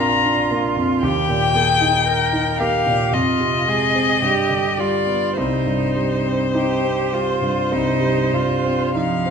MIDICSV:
0, 0, Header, 1, 4, 480
1, 0, Start_track
1, 0, Key_signature, -3, "minor"
1, 0, Tempo, 1047120
1, 471, Time_signature, 4, 2, 24, 8
1, 948, Tempo, 1075269
1, 1908, Tempo, 1167315
1, 3348, Tempo, 1247401
1, 3957, End_track
2, 0, Start_track
2, 0, Title_t, "Violin"
2, 0, Program_c, 0, 40
2, 0, Note_on_c, 0, 82, 68
2, 233, Note_off_c, 0, 82, 0
2, 466, Note_on_c, 0, 79, 85
2, 1164, Note_off_c, 0, 79, 0
2, 1188, Note_on_c, 0, 77, 77
2, 1425, Note_on_c, 0, 75, 69
2, 1432, Note_off_c, 0, 77, 0
2, 2146, Note_on_c, 0, 74, 56
2, 2153, Note_off_c, 0, 75, 0
2, 2382, Note_off_c, 0, 74, 0
2, 2386, Note_on_c, 0, 72, 65
2, 3818, Note_off_c, 0, 72, 0
2, 3827, Note_on_c, 0, 77, 65
2, 3957, Note_off_c, 0, 77, 0
2, 3957, End_track
3, 0, Start_track
3, 0, Title_t, "Cello"
3, 0, Program_c, 1, 42
3, 0, Note_on_c, 1, 65, 57
3, 475, Note_on_c, 1, 67, 57
3, 482, Note_off_c, 1, 65, 0
3, 716, Note_on_c, 1, 68, 52
3, 722, Note_off_c, 1, 67, 0
3, 948, Note_off_c, 1, 68, 0
3, 950, Note_on_c, 1, 70, 51
3, 1186, Note_on_c, 1, 67, 46
3, 1192, Note_off_c, 1, 70, 0
3, 1422, Note_on_c, 1, 65, 49
3, 1429, Note_off_c, 1, 67, 0
3, 1671, Note_on_c, 1, 68, 48
3, 1678, Note_off_c, 1, 65, 0
3, 1912, Note_off_c, 1, 68, 0
3, 1915, Note_on_c, 1, 67, 49
3, 2144, Note_on_c, 1, 65, 42
3, 2150, Note_off_c, 1, 67, 0
3, 2386, Note_on_c, 1, 63, 46
3, 2393, Note_off_c, 1, 65, 0
3, 2820, Note_off_c, 1, 63, 0
3, 2869, Note_on_c, 1, 67, 49
3, 3111, Note_on_c, 1, 65, 48
3, 3117, Note_off_c, 1, 67, 0
3, 3352, Note_on_c, 1, 63, 51
3, 3357, Note_off_c, 1, 65, 0
3, 3587, Note_on_c, 1, 65, 52
3, 3593, Note_off_c, 1, 63, 0
3, 3829, Note_off_c, 1, 65, 0
3, 3831, Note_on_c, 1, 53, 60
3, 3957, Note_off_c, 1, 53, 0
3, 3957, End_track
4, 0, Start_track
4, 0, Title_t, "Grand piano"
4, 0, Program_c, 2, 0
4, 0, Control_c, 2, 64, 127
4, 0, Note_on_c, 2, 34, 48
4, 0, Note_on_c, 2, 41, 39
4, 0, Note_on_c, 2, 58, 37
4, 0, Note_on_c, 2, 62, 43
4, 0, Note_on_c, 2, 70, 43
4, 63, Note_off_c, 2, 62, 0
4, 108, Note_on_c, 2, 62, 40
4, 183, Note_off_c, 2, 70, 0
4, 234, Note_off_c, 2, 58, 0
4, 234, Note_on_c, 2, 58, 42
4, 303, Note_off_c, 2, 62, 0
4, 350, Note_off_c, 2, 41, 0
4, 350, Note_on_c, 2, 41, 38
4, 425, Note_off_c, 2, 58, 0
4, 454, Note_off_c, 2, 34, 0
4, 470, Note_off_c, 2, 41, 0
4, 470, Note_on_c, 2, 39, 50
4, 479, Control_c, 2, 64, 0
4, 546, Control_c, 2, 64, 127
4, 588, Note_on_c, 2, 46, 39
4, 708, Note_on_c, 2, 58, 37
4, 779, Note_off_c, 2, 46, 0
4, 828, Note_on_c, 2, 63, 37
4, 899, Note_off_c, 2, 58, 0
4, 946, Note_on_c, 2, 70, 36
4, 1019, Note_off_c, 2, 63, 0
4, 1063, Note_on_c, 2, 63, 37
4, 1136, Note_off_c, 2, 70, 0
4, 1186, Note_on_c, 2, 58, 36
4, 1254, Note_off_c, 2, 63, 0
4, 1303, Note_on_c, 2, 46, 38
4, 1376, Note_off_c, 2, 58, 0
4, 1404, Note_off_c, 2, 39, 0
4, 1419, Note_on_c, 2, 41, 47
4, 1423, Note_off_c, 2, 46, 0
4, 1430, Control_c, 2, 64, 0
4, 1514, Control_c, 2, 64, 127
4, 1541, Note_on_c, 2, 48, 33
4, 1663, Note_on_c, 2, 56, 38
4, 1736, Note_off_c, 2, 48, 0
4, 1788, Note_on_c, 2, 60, 38
4, 1859, Note_off_c, 2, 56, 0
4, 1892, Note_off_c, 2, 41, 0
4, 1909, Note_off_c, 2, 60, 0
4, 1909, Note_on_c, 2, 43, 38
4, 1915, Control_c, 2, 64, 0
4, 1986, Control_c, 2, 64, 127
4, 2023, Note_on_c, 2, 50, 35
4, 2141, Note_on_c, 2, 55, 39
4, 2210, Note_off_c, 2, 50, 0
4, 2258, Note_on_c, 2, 59, 31
4, 2330, Note_off_c, 2, 55, 0
4, 2364, Note_off_c, 2, 43, 0
4, 2379, Note_off_c, 2, 59, 0
4, 2382, Note_on_c, 2, 36, 46
4, 2387, Control_c, 2, 64, 0
4, 2459, Control_c, 2, 64, 127
4, 2500, Note_on_c, 2, 43, 31
4, 2621, Note_on_c, 2, 55, 30
4, 2694, Note_off_c, 2, 43, 0
4, 2747, Note_on_c, 2, 60, 36
4, 2815, Note_off_c, 2, 55, 0
4, 2864, Note_on_c, 2, 63, 35
4, 2939, Note_off_c, 2, 60, 0
4, 2987, Note_on_c, 2, 60, 31
4, 3057, Note_off_c, 2, 63, 0
4, 3105, Note_on_c, 2, 55, 31
4, 3178, Note_off_c, 2, 60, 0
4, 3222, Note_on_c, 2, 43, 35
4, 3299, Note_off_c, 2, 55, 0
4, 3333, Note_off_c, 2, 36, 0
4, 3346, Note_on_c, 2, 36, 38
4, 3415, Note_off_c, 2, 43, 0
4, 3458, Note_on_c, 2, 55, 32
4, 3583, Note_on_c, 2, 43, 31
4, 3657, Note_off_c, 2, 55, 0
4, 3703, Note_on_c, 2, 60, 34
4, 3780, Note_off_c, 2, 43, 0
4, 3821, Note_on_c, 2, 63, 33
4, 3898, Note_off_c, 2, 60, 0
4, 3940, Note_on_c, 2, 60, 36
4, 3957, Note_off_c, 2, 36, 0
4, 3957, Note_off_c, 2, 60, 0
4, 3957, Note_off_c, 2, 63, 0
4, 3957, End_track
0, 0, End_of_file